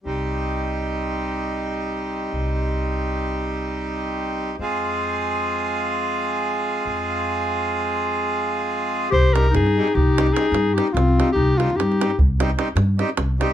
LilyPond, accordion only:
\new Staff \with { instrumentName = "Accordion" } { \time 11/8 \key c \minor \tempo 4 = 145 <g c' ees' g'>1~ <g c' ees' g'>4.~ | <g c' ees' g'>1~ <g c' ees' g'>4. | <aes c' f' aes'>1~ <aes c' f' aes'>4.~ | <aes c' f' aes'>1~ <aes c' f' aes'>4. |
r8 <g c' ees' g'>8 r8 <g c' ees' g'>8 r8 <g c' ees' g'>8 <g c' ees' g'>8 r8 <g c' ees' g'>8 r8 <g c' ees' g'>8 | r8 <g c' ees' g'>8 r8 <g c' ees' g'>8 r8 <g c' ees' g'>8 <g c' ees' g'>8 r8 <g c' ees' g'>8 r8 <g c' ees' g'>8 | }